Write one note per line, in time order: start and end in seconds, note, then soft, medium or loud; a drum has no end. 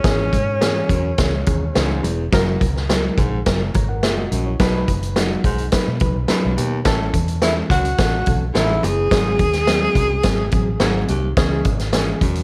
0.00 2.05 C#4 medium
0.04 0.28 G#1 loud
0.04 0.27 E2 medium
0.04 0.36 E3 loud
0.04 0.36 C#4 medium
0.04 0.36 G#4 loud
0.04 kick loud
0.04 snare loud
0.04 closed hi-hat medium
0.04 muted conga soft
0.32 0.80 G#2 medium
0.32 kick medium
0.32 closed hi-hat medium
0.32 muted conga soft
0.61 0.93 E3 medium
0.61 0.93 C#4 medium
0.61 0.93 G#4 loud
0.61 snare loud
0.61 closed hi-hat medium
0.61 high conga medium
0.89 1.13 E2 medium
0.89 1.12 F#2 medium
0.89 kick medium
0.89 closed hi-hat medium
1.18 1.42 C#2 medium
1.18 1.34 E3 medium
1.18 1.34 C#4 medium
1.18 1.35 G#4 medium
1.18 kick medium
1.18 snare loud
1.18 closed hi-hat medium
1.46 1.71 D#2 medium
1.46 1.63 E3 medium
1.46 1.63 C#4 medium
1.46 1.63 G#4 medium
1.46 kick medium
1.46 closed hi-hat medium
1.46 muted conga soft
1.75 1.99 C#2 medium
1.75 1.98 G#2 medium
1.75 2.08 E3 medium
1.75 2.07 C#4 medium
1.75 2.08 G#4 loud
1.75 snare loud
1.75 closed hi-hat medium
1.75 high conga soft
1.90 high conga soft
2.03 2.28 E1 medium
2.03 2.26 E2 medium
2.03 closed hi-hat medium
2.03 high conga medium
2.32 2.56 F#1 loud
2.32 2.55 F#2 medium
2.32 2.65 F#3 loud
2.32 2.65 E4 loud
2.32 2.65 A#4 loud
2.32 kick loud
2.32 snare loud
2.32 closed hi-hat medium
2.32 muted conga soft
2.61 3.08 C#2 medium
2.61 kick medium
2.61 closed hi-hat medium
2.61 muted conga medium
2.76 snare soft
2.89 3.21 F#3 medium
2.89 3.21 E4 medium
2.89 3.21 A#4 loud
2.89 snare loud
2.89 closed hi-hat medium
2.89 high conga medium
3.18 3.41 A#1 loud
3.18 3.40 G#2 medium
3.18 kick medium
3.18 closed hi-hat medium
3.18 low conga medium
3.46 3.70 F#1 medium
3.46 3.62 F#3 medium
3.46 3.62 E4 medium
3.46 3.62 A#4 medium
3.46 kick medium
3.46 snare loud
3.46 closed hi-hat loud
3.74 4.03 G#1 medium
3.74 3.89 C#5 medium
3.74 3.88 A#5 medium
3.74 kick medium
3.74 closed hi-hat medium
3.74 muted conga soft
3.74 low conga medium
3.89 4.03 A#4 medium
3.89 4.02 F#5 medium
4.03 4.26 F#1 medium
4.03 4.26 A#2 medium
4.03 4.17 G#4 medium
4.03 4.16 E5 medium
4.03 snare loud
4.03 closed hi-hat medium
4.03 high conga soft
4.17 4.45 F#4 medium
4.17 4.44 D#5 medium
4.17 high conga medium
4.32 4.55 A#1 medium
4.32 4.54 F#2 medium
4.32 closed hi-hat medium
4.32 high conga medium
4.46 4.73 E4 medium
4.46 4.73 C#5 medium
4.59 4.83 B1 loud
4.59 4.82 B2 medium
4.59 4.91 F#3 loud
4.59 4.91 D#4 loud
4.59 4.91 B4 loud
4.59 kick loud
4.59 snare loud
4.59 closed hi-hat medium
4.59 muted conga soft
4.88 5.35 F#1 medium
4.88 kick medium
4.88 closed hi-hat medium
4.88 muted conga medium
5.03 closed hi-hat soft
5.16 5.48 F#3 medium
5.16 5.48 D#4 medium
5.16 5.48 F#4 medium
5.16 snare loud
5.16 closed hi-hat medium
5.16 high conga medium
5.44 5.68 B1 medium
5.44 5.67 G#2 medium
5.44 kick medium
5.44 closed hi-hat medium
5.58 closed hi-hat soft
5.72 5.89 F#3 medium
5.72 5.89 D#4 medium
5.72 5.89 B4 loud
5.72 kick medium
5.72 snare loud
5.72 closed hi-hat loud
5.88 5.99 B2 medium
6.00 6.13 C#2 medium
6.00 6.17 F#3 medium
6.00 6.17 D#4 medium
6.00 6.17 B4 medium
6.00 kick medium
6.00 closed hi-hat medium
6.16 6.27 B1 medium
6.28 6.52 F#2 medium
6.28 6.61 F#3 medium
6.28 6.61 D#4 medium
6.28 6.61 B4 medium
6.28 muted fingered electric bass stroke soft
6.28 snare loud
6.28 closed hi-hat medium
6.28 high conga soft
6.44 6.56 B1 medium
6.44 high conga medium
6.56 6.79 D#2 medium
6.56 6.82 B2 medium
6.56 closed hi-hat medium
6.56 high conga medium
6.85 7.09 A1 loud
6.85 7.08 A2 medium
6.85 7.17 E3 loud
6.85 7.18 C#4 loud
6.85 7.18 A4 loud
6.85 kick loud
6.85 snare loud
6.85 closed hi-hat medium
6.85 muted conga soft
7.13 7.61 E2 medium
7.13 kick medium
7.13 closed hi-hat medium
7.13 muted conga soft
7.28 closed hi-hat soft
7.42 7.74 E3 medium
7.42 7.74 C#4 medium
7.42 7.55 E4 medium
7.42 7.74 A4 medium
7.42 snare loud
7.42 closed hi-hat medium
7.42 high conga medium
7.69 7.94 C#2 medium
7.69 7.92 F#2 medium
7.69 8.51 F#4 medium
7.69 kick medium
7.69 closed hi-hat medium
7.69 low conga medium
7.85 closed hi-hat soft
7.98 8.22 A1 medium
7.98 8.14 E3 medium
7.98 8.15 C#4 medium
7.98 8.15 A4 medium
7.98 kick loud
7.98 snare loud
7.98 closed hi-hat medium
8.26 8.50 B1 medium
8.26 8.43 E3 medium
8.26 8.43 C#4 medium
8.26 8.43 A4 medium
8.26 kick medium
8.26 closed hi-hat medium
8.26 low conga medium
8.54 8.79 A1 medium
8.54 8.77 G#2 medium
8.54 8.87 E3 medium
8.54 8.87 C#4 medium
8.54 8.86 E4 medium
8.54 8.87 A4 medium
8.54 snare loud
8.54 closed hi-hat medium
8.54 high conga medium
8.69 high conga medium
8.82 9.07 F#1 medium
8.82 9.05 E2 medium
8.82 11.09 G#4 loud
8.82 closed hi-hat medium
8.82 high conga medium
9.10 9.35 G#1 loud
9.10 9.33 G#2 medium
9.10 9.43 F#3 loud
9.10 9.43 C4 medium
9.10 9.43 G#4 loud
9.10 kick loud
9.10 snare loud
9.10 closed hi-hat medium
9.39 9.86 D#2 medium
9.39 kick medium
9.39 closed hi-hat medium
9.39 muted conga medium
9.53 snare soft
9.53 closed hi-hat soft
9.67 9.99 F#3 medium
9.67 9.99 C4 medium
9.67 10.00 G#4 loud
9.67 snare loud
9.67 closed hi-hat medium
9.67 high conga medium
9.95 10.19 C2 medium
9.95 10.18 F#2 medium
9.95 kick medium
9.95 closed hi-hat medium
10.23 10.48 G#1 medium
10.23 10.40 F#3 medium
10.23 10.40 C4 medium
10.23 10.40 G#4 loud
10.23 kick medium
10.23 snare loud
10.23 closed hi-hat loud
10.51 10.76 A1 medium
10.51 10.68 F#3 medium
10.51 10.68 C4 medium
10.51 10.68 G#4 medium
10.51 kick medium
10.51 closed hi-hat medium
10.51 muted conga soft
10.80 11.04 G#1 medium
10.80 11.03 G#2 medium
10.80 11.12 F#3 medium
10.80 11.13 C4 medium
10.80 11.13 G#4 loud
10.80 snare loud
10.80 closed hi-hat medium
10.80 high conga medium
10.94 high conga medium
11.08 11.33 C2 medium
11.08 11.31 D#2 medium
11.08 closed hi-hat medium
11.08 high conga medium
11.37 11.61 C#2 medium
11.37 11.60 E2 medium
11.37 11.69 E3 loud
11.37 11.69 C#4 loud
11.37 11.69 G#4 loud
11.37 kick loud
11.37 snare loud
11.37 closed hi-hat medium
11.37 muted conga soft
11.65 12.12 G#1 medium
11.65 kick medium
11.65 closed hi-hat medium
11.65 muted conga soft
11.79 snare soft
11.79 closed hi-hat soft
11.93 12.25 E3 medium
11.93 12.25 C#4 medium
11.93 12.26 G#4 loud
11.93 snare loud
11.93 closed hi-hat medium
11.93 high conga medium
12.21 12.43 E2 medium
12.21 12.43 F#2 medium
12.21 kick medium
12.21 closed hi-hat medium
12.21 low conga medium
12.35 closed hi-hat soft